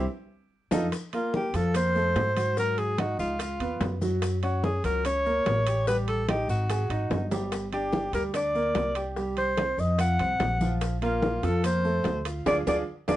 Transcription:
0.71 upright bass F2, grand piano D#4 F4 A4, low bongo, high conga, high timbale, maracas
0.92 high bongo, high conga, high timbale, maracas
1.13 grand piano A#3 A#4, alto saxophone F4, high conga, high timbale, maracas
1.33 alto saxophone G4, high bongo, high conga, low timbale, maracas
1.53 upright bass F2, grand piano F3 F4, alto saxophone A4, high bongo, high conga, high timbale, maracas
1.74 grand piano A#3 A#4, alto saxophone C5, high bongo, high conga, high timbale, maracas
1.95 grand piano A3 A4, high bongo, high conga, maracas
2.15 upright bass G#2, high bongo, low bongo, high conga, high timbale, low timbale, maracas
2.36 grand piano F#4 F#5, high bongo, high conga, high timbale, maracas
2.57 grand piano F#3 F#4, alto saxophone A#4, high bongo, high conga, maracas
2.78 alto saxophone G#4, high conga, high timbale, maracas
2.98 grand piano D#4 D#5, alto saxophone F#4, high bongo, high conga, high timbale, low timbale, maracas
3.19 upright bass C#2, alto saxophone F4, high bongo, high conga, maracas
3.39 grand piano F4 F5, high bongo, high conga, high timbale, maracas
3.60 upright bass D#2, grand piano B3 B4, high conga, high timbale, maracas
3.80 upright bass F#2, high bongo, low bongo, high conga, high timbale, low timbale, maracas
4.01 grand piano F#3 F#4, high bongo, high conga, maracas
4.22 high bongo, high conga, high timbale, maracas
4.43 grand piano C#4 C#5, alto saxophone F#4, high conga, high timbale, maracas
4.63 alto saxophone G#4, high bongo, high conga, low timbale, maracas
4.84 upright bass C#2, grand piano F#3 F#4, alto saxophone A#4, high bongo, high conga, high timbale, maracas
5.05 grand piano C#4 C#5, alto saxophone C#5, high bongo, high conga, high timbale, maracas
5.26 grand piano A#3 A#4, high bongo, high conga, maracas
5.46 upright bass A1, high bongo, low bongo, high conga, high timbale, low timbale, maracas
5.66 grand piano G4 G5, high bongo, high timbale, maracas
5.87 grand piano G3 G4, alto saxophone B4, high bongo, high conga, maracas
6.08 alto saxophone A4, high conga, high timbale, maracas
6.28 grand piano D#4 D#5, alto saxophone G4, high bongo, high conga, high timbale, low timbale, maracas
6.48 upright bass G#1, alto saxophone F#4, high bongo, high conga, maracas
6.70 grand piano G#4 G#5, high bongo, high conga, high timbale, maracas
6.90 upright bass G#1, grand piano D#4 D#5, high conga, high timbale, maracas
7.10 upright bass G1, high bongo, low bongo, high conga, high timbale, maracas
7.31 grand piano G3 G4, high bongo, high conga, low timbale, maracas
7.52 high bongo, high conga, high timbale, maracas
7.73 grand piano D4 D5, alto saxophone G4, high conga, high timbale, maracas
7.93 high bongo, high conga, low timbale, maracas
8.13 upright bass D2, grand piano G3 G4, alto saxophone A#4, high bongo, high conga, high timbale, maracas
8.34 grand piano D4 D5, alto saxophone D5, high bongo, high conga, high timbale, maracas
8.55 grand piano A#3 A#4, high bongo, high conga, maracas
8.75 upright bass C2, high bongo, low bongo, high conga, high timbale, low timbale, maracas
8.96 grand piano G4 G5, high bongo, high timbale, maracas
9.17 grand piano G3 G4, high bongo, high conga, maracas
9.37 alto saxophone C5, high conga, high timbale, maracas
9.57 grand piano C4 C5, high bongo, high conga, high timbale, low timbale, maracas
9.78 upright bass F2, alto saxophone D#5, high bongo, high conga, maracas
9.99 grand piano F4 F5, alto saxophone F#5, high bongo, high conga, high timbale, maracas
10.19 upright bass C2, grand piano C4 C5, high conga, high timbale, maracas
10.40 upright bass A#1, high bongo, low bongo, high conga, high timbale, low timbale, maracas
10.61 grand piano F3 F4, high bongo, high conga, maracas
10.81 high bongo, high conga, high timbale, maracas
11.02 grand piano A#3 A#4, alto saxophone F4, high conga, high timbale, maracas
11.22 high bongo, high conga, low timbale, maracas
11.43 upright bass F2, grand piano F3 F4, alto saxophone A4, high bongo, high conga, high timbale, maracas
11.64 grand piano A#3 A#4, alto saxophone C5, high bongo, high conga, high timbale, maracas
11.84 grand piano A3 A4, high bongo, high conga, maracas
12.04 upright bass D2, high bongo, low bongo, high conga, high timbale, low timbale, maracas
12.25 grand piano F4 F5, high bongo, high timbale, maracas
12.46 upright bass D2, grand piano D4 F4 G#4, alto saxophone D5, high bongo, high conga, high timbale, maracas
12.66 upright bass D2, grand piano D4 F4 G#4, alto saxophone D5, high bongo, high conga, high timbale, maracas
13.08 upright bass D2, grand piano D4 F4 G#4, alto saxophone D5, high bongo, high conga, high timbale, maracas

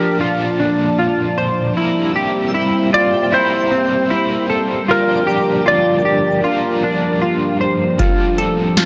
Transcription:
Already playing: overdriven electric guitar F3 A#3 D4, ambient pad F3 A#3 D4 D5 A5, clean electric guitar G4, electric slide guitar A#4
0.18 overdriven electric guitar A#2 D3 F3, clean electric guitar F4
0.23 overdriven electric guitar A#3 D4 A4
0.60 clean electric guitar D4
0.99 clean electric guitar F4
1.38 clean electric guitar C5
1.73 overdriven electric guitar C3 G3, ambient pad G3 C4 G4 C5, clean electric guitar E4, synth texture E5
1.77 overdriven electric guitar A#3 E4 A#4
2.01 synth texture G5
2.16 clean electric guitar G4
2.54 clean electric guitar E4
2.94 clean electric guitar F4, electric slide guitar D5
3.31 overdriven electric guitar C3 G3 A#3 E4 A#4, clean electric guitar E4, electric slide guitar C5
3.71 clean electric guitar C4
4.08 overdriven electric guitar G3 A#3 E4, clean electric guitar E4
4.13 overdriven electric guitar A#4
4.49 clean electric guitar A4, synth texture D5
4.74 synth texture G5
4.85 overdriven electric guitar G2 D3 F3, ambient pad F3 D4 A#4, clean electric guitar F4
4.91 overdriven electric guitar A#3 D4 A#4, electric slide guitar A#4
4.98 synth texture A5
5.27 clean electric guitar G4
5.66 clean electric guitar F4, electric slide guitar D5
6.05 clean electric guitar G4
6.42 overdriven electric guitar G2 D3 F3, clean electric guitar F4
6.47 overdriven electric guitar A#3 D4 A#4
6.83 clean electric guitar D4
7.22 clean electric guitar F4
7.61 clean electric guitar C5
7.98 overdriven electric guitar F3 G3 C4 D4 A4, ambient pad A3 G4 C5, clean electric guitar F4, kick, closed hi-hat
8.38 clean electric guitar A4, closed hi-hat
8.77 clean electric guitar F4, snare, closed hi-hat

